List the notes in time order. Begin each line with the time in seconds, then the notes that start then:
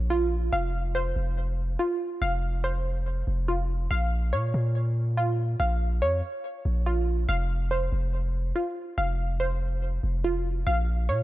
Already playing: A#1 C#5 F5
0.10 F4
0.53 F1 F5
0.95 C5
1.16 F1
1.79 F4
2.22 F1 F5
2.64 C5
3.27 F1
3.48 F4
3.91 A#1 F5
4.33 A#2 C#5
4.54 A#2
5.17 F4
5.60 A#1 F5
6.02 F2 C#5
6.65 A#1
6.86 F4
7.29 F1 F5
7.71 C5
7.92 F1
8.56 F4
8.98 F1 F5
9.40 C5
10.03 F1
10.24 F4
10.67 A#1 F5
11.09 A#2 C#5